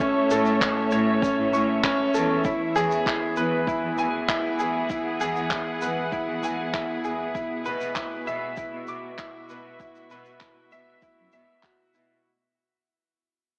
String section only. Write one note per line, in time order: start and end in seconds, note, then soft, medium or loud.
0.00 2.45 A2 medium
0.00 2.45 A3 medium
0.00 3.48 C#5 medium
0.00 3.92 E5 medium
2.45 7.35 E3 medium
2.77 12.25 B3 medium
3.75 9.31 G#4 medium
4.24 8.46 F#5 medium
7.35 12.25 B2 medium
8.21 12.25 F#4 medium
8.68 12.25 E5 medium